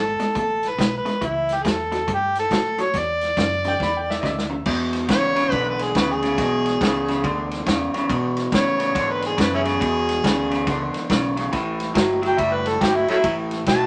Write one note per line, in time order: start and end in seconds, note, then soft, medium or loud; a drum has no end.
0.00 0.17 G#1 medium
0.00 0.17 B2 medium
0.00 0.17 G#3 medium
0.00 0.34 A4 medium
0.19 0.34 B2 medium
0.19 0.34 G#3 medium
0.19 muted fingered electric bass stroke soft
0.19 snare soft
0.19 closed hi-hat medium
0.35 0.77 A1 medium
0.35 0.75 B2 medium
0.35 0.75 A3 medium
0.35 0.70 A4 medium
0.35 kick medium
0.35 closed hi-hat medium
0.63 snare soft
0.63 closed hi-hat medium
0.69 0.95 B4 medium
0.78 1.04 B1 medium
0.78 1.03 B2 medium
0.78 1.03 G#3 medium
0.78 kick medium
0.78 snare loud
0.78 closed hi-hat medium
0.97 1.27 B4 medium
1.05 1.20 B2 medium
1.05 1.20 G#3 medium
1.05 snare soft
1.05 closed hi-hat medium
1.21 1.64 C#2 medium
1.21 1.61 A2 medium
1.21 1.62 E3 medium
1.21 kick medium
1.21 closed hi-hat medium
1.25 1.56 E4 medium
1.49 snare soft
1.49 closed hi-hat medium
1.54 1.64 G4 medium
1.62 2.06 E2 medium
1.62 1.89 A2 medium
1.62 1.90 F#3 medium
1.62 1.73 G#4 medium
1.62 kick medium
1.62 closed hi-hat medium
1.66 snare loud
1.71 2.11 A4 medium
1.92 2.06 A2 medium
1.92 2.06 F#3 medium
1.92 snare soft
1.92 closed hi-hat medium
2.08 2.50 G2 medium
2.08 2.48 A2 medium
2.08 2.48 G3 medium
2.08 kick medium
2.08 closed hi-hat medium
2.14 2.36 G4 medium
2.35 2.83 A4 medium
2.35 snare soft
2.35 closed hi-hat medium
2.51 2.93 A2 medium
2.51 2.76 A2 medium
2.51 2.76 F#3 medium
2.51 kick medium
2.51 snare loud
2.51 closed hi-hat medium
2.78 2.93 A2 medium
2.78 2.93 F#3 medium
2.78 2.99 C#5 medium
2.78 snare soft
2.78 closed hi-hat medium
2.93 3.36 E2 medium
2.93 3.34 E2 medium
2.93 3.35 B2 medium
2.93 4.52 D5 medium
2.93 kick medium
2.93 snare soft
2.93 closed hi-hat medium
3.21 snare soft
3.21 closed hi-hat medium
3.37 3.62 E2 medium
3.37 3.79 F#2 medium
3.37 3.62 C#3 medium
3.37 kick medium
3.37 snare loud
3.37 closed hi-hat medium
3.64 3.79 E2 medium
3.64 3.79 C#3 medium
3.64 3.81 G5 medium
3.64 snare soft
3.64 closed hi-hat medium
3.80 4.22 E2 medium
3.80 4.20 E2 medium
3.80 4.21 D3 medium
3.80 3.95 B5 medium
3.80 kick medium
3.80 snare medium
3.97 4.10 G5 medium
4.10 4.23 E5 medium
4.10 snare medium
4.21 4.65 D2 medium
4.21 4.48 E2 medium
4.21 4.48 C#3 medium
4.21 4.24 D#5 medium
4.21 kick medium
4.21 snare medium
4.26 4.58 E5 medium
4.38 snare medium
4.50 4.64 E2 medium
4.50 4.65 C#3 medium
4.66 5.08 E2 medium
4.66 5.06 E2 medium
4.66 5.06 B2 medium
4.66 kick medium
4.66 snare soft
4.66 crash loud
4.93 snare soft
4.93 ride medium
5.08 5.50 A1 medium
5.08 5.33 E2 medium
5.08 5.33 C#3 medium
5.08 5.52 C#5 loud
5.08 kick medium
5.08 snare loud
5.08 ride medium
5.35 5.50 E2 medium
5.35 5.50 C#3 medium
5.35 snare soft
5.35 ride medium
5.52 5.93 B1 medium
5.52 5.92 E2 medium
5.52 5.92 D3 loud
5.52 5.70 B4 loud
5.52 kick medium
5.52 ride medium
5.70 5.83 B4 medium
5.79 5.99 G#4 medium
5.79 snare soft
5.79 ride medium
5.95 6.36 D2 loud
5.95 6.20 E2 medium
5.95 6.20 C#3 medium
5.95 6.10 B4 medium
5.95 kick medium
5.95 snare loud
5.95 ride medium
6.11 7.35 G#4 loud
6.22 6.36 E2 medium
6.22 6.37 C#3 medium
6.22 snare soft
6.22 ride medium
6.38 6.80 B1 medium
6.38 6.78 E2 medium
6.38 6.78 B2 medium
6.38 kick medium
6.38 snare soft
6.38 ride medium
6.66 snare soft
6.66 ride medium
6.81 7.22 C#2 medium
6.81 7.06 E2 medium
6.81 7.06 C#3 medium
6.81 kick medium
6.81 snare loud
6.81 ride medium
7.08 7.23 E2 medium
7.08 7.23 C#3 medium
7.08 snare soft
7.08 ride medium
7.24 7.65 D2 medium
7.24 7.63 E2 medium
7.24 7.64 D3 loud
7.24 kick medium
7.24 ride medium
7.51 snare soft
7.51 ride medium
7.66 7.92 E2 medium
7.66 7.91 E2 medium
7.66 7.91 C#3 medium
7.66 kick medium
7.66 snare loud
7.66 ride medium
7.94 8.08 E2 medium
7.94 8.08 C#3 medium
7.94 snare soft
7.94 ride medium
8.09 8.49 E2 medium
8.09 8.51 B2 medium
8.09 8.49 B2 loud
8.09 kick medium
8.09 ride medium
8.37 snare soft
8.37 ride medium
8.52 8.77 E2 medium
8.52 8.94 A2 loud
8.52 8.77 C#3 loud
8.52 9.13 C#5 loud
8.52 kick medium
8.52 snare loud
8.52 ride medium
8.79 8.93 E2 medium
8.79 8.93 C#3 medium
8.79 snare soft
8.79 ride medium
8.95 9.35 E2 medium
8.95 9.37 G#2 medium
8.95 9.35 D3 medium
8.95 kick medium
8.95 snare soft
8.95 ride medium
9.12 9.25 B4 medium
9.22 9.39 G#4 medium
9.22 snare soft
9.22 ride medium
9.37 9.62 E2 medium
9.37 9.80 F#2 loud
9.37 9.62 C#3 medium
9.37 kick medium
9.37 snare loud
9.37 ride medium
9.41 9.53 B4 medium
9.54 9.62 C#4 medium
9.54 9.62 E4 medium
9.54 10.78 G#4 loud
9.64 9.79 E2 medium
9.64 9.79 C#3 medium
9.64 snare soft
9.64 ride medium
9.80 10.20 E2 medium
9.80 10.23 E2 medium
9.80 10.20 B2 loud
9.80 kick medium
9.80 ride medium
10.09 snare soft
10.09 ride medium
10.24 10.65 D2 loud
10.24 10.48 E2 medium
10.24 10.49 C#3 medium
10.24 kick medium
10.24 snare loud
10.24 ride medium
10.50 10.65 E2 medium
10.50 10.65 C#3 medium
10.50 snare soft
10.50 ride medium
10.67 10.92 C#2 medium
10.67 11.06 E2 medium
10.67 11.07 D3 medium
10.67 kick medium
10.67 snare soft
10.67 ride medium
10.94 snare soft
10.94 ride medium
11.10 11.51 B1 medium
11.10 11.34 E2 medium
11.10 11.34 C#3 medium
11.10 kick medium
11.10 snare loud
11.10 ride medium
11.37 11.51 E2 medium
11.37 11.51 C#3 medium
11.37 snare soft
11.37 ride medium
11.52 11.94 A1 medium
11.52 11.92 A2 medium
11.52 11.92 E3 loud
11.52 kick medium
11.52 snare soft
11.52 ride medium
11.80 snare soft
11.80 ride medium
11.94 12.37 G1 medium
11.94 12.19 A2 medium
11.94 12.20 F#3 loud
11.94 kick medium
11.94 snare loud
11.94 ride medium
12.22 12.36 A2 medium
12.22 12.36 F#3 medium
12.22 snare soft
12.22 ride medium
12.27 12.41 G5 medium
12.38 12.80 F#1 medium
12.38 12.78 A2 medium
12.38 12.78 G3 medium
12.38 12.54 E5 medium
12.38 kick medium
12.38 ride medium
12.53 12.69 B4 medium
12.66 12.82 A4 medium
12.66 snare soft
12.66 ride medium
12.80 13.06 G1 medium
12.80 13.05 A2 medium
12.80 13.05 F#3 medium
12.80 12.97 G4 medium
12.80 kick medium
12.80 snare loud
12.80 ride medium
12.96 13.09 E4 medium
13.07 13.23 A2 medium
13.07 13.23 F#3 medium
13.07 13.17 A3 medium
13.07 13.16 C#4 medium
13.07 13.32 E4 loud
13.07 muted fingered electric bass stroke soft
13.07 snare soft
13.07 ride medium
13.24 13.65 A1 medium
13.24 13.64 A2 medium
13.24 13.64 E3 loud
13.24 kick medium
13.24 ride loud
13.51 snare soft
13.51 ride medium
13.66 13.87 B1 medium
13.66 13.87 A2 medium
13.66 13.87 F#3 medium
13.66 13.87 A5 loud
13.66 kick medium
13.66 snare loud
13.66 ride medium